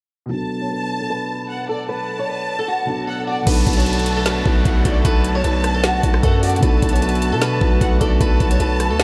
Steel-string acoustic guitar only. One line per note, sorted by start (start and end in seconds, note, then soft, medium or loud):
0.31 0.60 B4 loud
0.61 0.69 C#5 medium
0.70 0.99 B4 medium
1.01 1.09 A4 medium
1.10 1.66 B4 medium
1.69 1.86 A4 medium
1.89 2.17 B4 loud
2.19 2.27 C#5 medium
2.29 2.57 B4 medium
2.59 2.67 A4 medium
2.68 3.05 F#4 medium
3.07 3.24 A4 medium
3.27 3.44 F#4 medium
3.47 3.75 B4 medium
3.77 3.85 C#5 medium
3.86 4.15 B4 medium
4.17 4.25 A4 medium
4.26 4.81 B4 medium
4.85 5.02 A4 medium
5.05 5.33 B4 loud
5.35 5.43 C#5 medium
5.44 5.73 B4 medium
5.74 5.82 A4 medium
5.84 6.21 F#4 medium
6.23 6.40 A4 loud
6.43 6.60 F#4 medium
6.62 6.91 B4 loud
6.93 7.01 C#5 medium
7.02 7.30 B4 medium
7.32 7.40 A4 medium
7.42 7.97 B4 medium
8.01 8.18 A4 medium
8.21 8.49 B4 loud
8.51 8.59 C#5 medium
8.60 8.88 B4 medium
8.90 8.98 A4 medium
9.00 9.04 F#4 medium